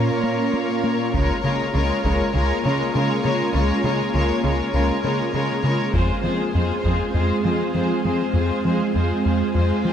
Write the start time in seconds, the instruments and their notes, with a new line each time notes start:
Already playing: analog synth bass A#2, cello section A#2, ambient pad A#3 C#4 A#4 F5, viola section A#3 F4, violin section A#4 C#5
0.24 analog synth bass A#3
0.54 analog synth bass A#3
0.84 analog synth bass A#3
1.13 analog synth bass C#2, cello section C#3, viola section G#3 F4, ambient pad A#3 C#4 F4 G#4, violin section A#4 C#5, taiko
1.44 analog synth bass C#3, cello section C#3, viola section G#3 F4, violin section A#4 C#5
1.74 analog synth bass C#2, cello section C#3, viola section G#3 F4, violin section A#4 C#5
2.04 analog synth bass C#2, cello section C#3, viola section G#3 F4, violin section A#4 C#5, taiko
2.34 analog synth bass C#2, cello section C#3, viola section G#3 F4, violin section A#4 C#5
2.64 cello section C#3, analog synth bass C#3, viola section G#3 F4, violin section A#4 C#5
2.94 cello section C#3, analog synth bass C#3, viola section G#3 F4, violin section A#4 C#5
3.23 cello section C#3, analog synth bass C#3, viola section G#3 F4, violin section A#4 C#5
3.53 analog synth bass C#2, cello section C#3, viola section G#3 F4, violin section A#4 C#5
3.84 cello section C#3, analog synth bass C#3, viola section G#3 F4, violin section A#4 C#5
4.13 analog synth bass C#2, cello section C#3, viola section G#3 F4, violin section A#4 C#5
4.43 analog synth bass C#2, cello section C#3, viola section G#3 F4, violin section A#4 C#5
4.73 analog synth bass C#2, cello section C#3, viola section G#3 F4, violin section A#4 C#5
5.03 cello section C#3, analog synth bass C#3, viola section G#3 F4, violin section A#4 C#5
5.33 cello section C#3, analog synth bass C#3, viola section G#3 F4, violin section A#4 C#5
5.64 analog synth bass C#3, cello section C#3, viola section G#3 F4, violin section A#4 C#5
5.94 analog synth bass F2, cello section F2, ambient pad G#3 C4 F4 G#4, viola section G#3 F4, violin section G#4 C5, taiko
6.23 cello section F2, analog synth bass F3, viola section G#3 F4, violin section G#4 C5
6.53 cello section F2, analog synth bass F2, viola section G#3 F4, violin section G#4 C5
6.82 cello section F2, analog synth bass F2, viola section G#3 F4, violin section G#4 C5, taiko
7.13 cello section F2, analog synth bass F2, viola section G#3 F4, violin section G#4 C5
7.44 cello section F2, analog synth bass F3, viola section G#3 F4, violin section G#4 C5
7.73 cello section F2, analog synth bass F3, viola section G#3 F4, violin section G#4 C5
8.04 cello section F2, analog synth bass F3, viola section G#3 F4, violin section G#4 C5
8.34 analog synth bass F2, cello section F2, viola section G#3 F4, violin section G#4 C5, reverse cymbal
8.64 cello section F2, analog synth bass F3, viola section G#3 F4, violin section G#4 C5
8.94 cello section F2, analog synth bass F2, viola section G#3 F4, violin section G#4 C5
9.23 cello section F2, analog synth bass F2, viola section G#3 F4, violin section G#4 C5
9.54 cello section F2, analog synth bass F2, viola section G#3 F4, violin section G#4 C5
9.85 cello section F2, analog synth bass F3, viola section G#3 F4, violin section G#4 C5